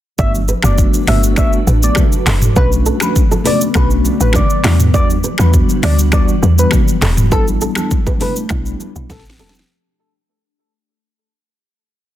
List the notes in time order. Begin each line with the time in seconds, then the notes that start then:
0.18 G1 G3 A3 B3 D4 F#4 A4 B4 D5 E5, kick, shaker
0.35 high conga, shaker
0.48 G4 B4, shaker
0.63 F#1 A3 B3 D4 F#4 D5, finger snap, cross-stick, high conga, shaker
0.78 kick, shaker
0.94 high conga, shaker
1.07 G1 A3 B3 D4 F#4 C#5 E5, finger snap, cross-stick, open hi-hat, low conga, shaker
1.23 shaker
1.36 A3 B3 D4 F#4 B4 D5 E5, finger snap, kick, cross-stick, shaker
1.53 shaker
1.67 A1 G4 B4, high conga, shaker
1.82 A3 B3 D4 F#4 D5, shaker
1.95 finger snap, kick, cross-stick, high conga, low conga, shaker
2.12 shaker
2.26 F#1 F#4 A4, finger snap, cross-stick, clap, open hi-hat, high conga, low conga, shaker
2.42 mid tom, shaker
2.56 B1 D3 A3 B3 C#4 D4 F#4 B4, kick, shaker
2.72 high conga, shaker
2.86 F#4 A4, shaker
3.00 A3 C#4 D4 F#4 B4, finger snap, cross-stick, high conga, shaker
3.16 kick, shaker
3.31 F#4 A4, high conga, shaker
3.44 A3 C#4 D4 F#4 G4 B4 D5, open hi-hat, low conga, shaker
3.61 shaker
3.74 B1 A3 C#4 D4 F#4 A4 B4, finger snap, kick, cross-stick, shaker
3.91 shaker
4.05 high conga, shaker
4.20 A1 A3 C#4 D4 F#4 B4, shaker
4.33 F#4 B4 D5, finger snap, kick, cross-stick, high conga, low conga, shaker
4.50 shaker
4.64 E2 E3 G3 B3 D4 E4 F#4 G4, finger snap, cross-stick, clap, open hi-hat, high conga, low conga, shaker
4.80 mid tom, shaker
4.94 G3 B3 D4 F#4 B4 D5, kick, shaker
5.10 high conga, shaker
5.24 G4 B4, shaker
5.38 E2 G3 B3 D4 F#4 B4, finger snap, cross-stick, high conga, shaker
5.54 kick, shaker
5.69 high conga, shaker
5.82 D2 G3 B3 D4 F#4 C#5 D5 E5, finger snap, cross-stick, open hi-hat, low conga, shaker
5.99 shaker
6.12 G3 B3 D4 F#4 B4 D5, finger snap, kick, cross-stick, shaker
6.28 shaker
6.42 E2 G4 B4, high conga, shaker
6.58 G3 B3 D4 F#4 B4, shaker
6.71 finger snap, kick, cross-stick, high conga, low conga, shaker
6.88 shaker
7.01 E1 F#4 A4, finger snap, cross-stick, clap, open hi-hat, high conga, low conga, shaker
7.17 mid tom, shaker
7.31 A1 G3 A3 B3 D4 E4 G4 A4 B4, kick, shaker
7.48 high conga, shaker
7.61 F#4 A4, shaker
7.75 G3 B3 D4 E4 A4, finger snap, cross-stick, high conga, shaker
7.91 kick, shaker
8.07 G4 B4, kick, high conga, shaker
8.20 G3 B3 D4 E4 F#4 A4 B4, open hi-hat, low conga, shaker
8.36 shaker
8.49 B1 G3 B3 D4 E4 G4, finger snap, kick, cross-stick, shaker
8.66 shaker
8.80 high conga, shaker
8.95 B1 G3 B3 D4 E4, shaker
9.10 A1 G4 A4 B4, kick, snare, high conga, low conga, shaker
9.20 snare
9.25 shaker
9.30 snare
9.38 E1 G3 B3 D4 E4 F#4 A4, snare, open hi-hat, high conga, low conga, shaker
9.49 snare
9.55 shaker
9.59 snare